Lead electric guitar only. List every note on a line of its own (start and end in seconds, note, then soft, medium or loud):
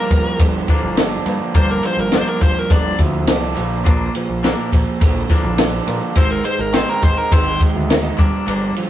0.00 0.39 A#4 medium
1.56 1.71 C5 medium
1.71 1.84 A#4 medium
1.87 1.99 C5 medium
2.01 2.13 A#4 medium
2.15 2.28 C5 medium
2.29 2.42 A#4 medium
2.42 2.59 C5 medium
2.59 2.71 A#4 medium
2.72 2.99 D5 medium
6.18 6.31 C5 medium
6.31 6.45 A#4 medium
6.45 6.61 C5 medium
6.61 6.74 A#4 medium
6.74 6.89 C5 loud
6.89 7.03 A#4 medium
7.03 7.18 C5 medium
7.18 7.32 A#4 medium
7.32 7.60 C5 medium